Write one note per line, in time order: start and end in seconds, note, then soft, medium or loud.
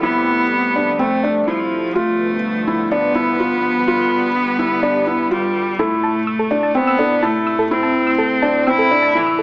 0.00 1.92 F2 medium
0.00 1.92 C3 medium
0.00 1.92 G3 medium
0.00 1.92 A3 medium
0.00 0.95 B3 medium
0.00 0.42 E4 medium
0.76 0.95 D4 medium
0.98 1.43 A3 medium
0.98 1.19 C4 medium
1.24 1.43 D4 medium
1.46 1.96 F3 medium
1.46 1.87 E4 medium
1.95 5.76 G2 medium
1.95 5.76 D3 medium
1.95 3.86 F3 medium
1.95 2.92 A3 medium
1.95 5.76 B3 medium
1.95 2.35 F4 medium
2.67 2.87 E4 medium
2.90 5.31 B3 medium
2.90 3.11 D4 medium
3.15 3.35 E4 medium
3.40 3.79 F4 medium
3.87 5.78 G3 medium
3.87 4.27 F4 medium
4.59 4.79 E4 medium
4.83 5.03 D4 medium
5.07 5.27 E4 medium
5.31 5.82 G3 medium
5.31 5.70 F4 medium
5.79 9.43 A2 medium
5.79 9.43 C3 medium
5.79 9.43 A3 medium
5.79 6.78 A3 medium
5.79 6.18 E4 medium
5.79 9.43 E4 medium
5.79 5.87 A4 medium
6.04 6.08 A5 medium
6.27 6.32 E6 medium
6.39 6.47 A4 medium
6.51 6.71 D4 medium
6.63 6.68 A5 medium
6.75 7.26 B3 medium
6.75 6.95 C4 medium
6.87 6.92 E6 medium
6.99 7.19 D4 medium
6.99 7.06 A4 medium
7.23 7.74 A3 medium
7.23 7.62 E4 medium
7.23 7.27 A5 medium
7.47 7.51 E6 medium
7.59 7.66 A4 medium
7.71 8.70 C4 medium
7.71 8.10 E4 medium
7.83 7.88 A5 medium
8.07 8.12 E6 medium
8.18 8.26 A4 medium
8.42 8.63 D4 medium
8.42 8.47 A5 medium
8.67 8.87 C4 medium
8.67 9.18 E4 medium
8.67 8.71 E6 medium
8.78 8.86 A4 medium
8.91 9.11 D4 medium
9.02 9.07 A5 medium
9.15 9.43 E3 medium
9.15 9.43 E4 medium
9.27 9.31 E6 medium
9.39 9.43 A4 medium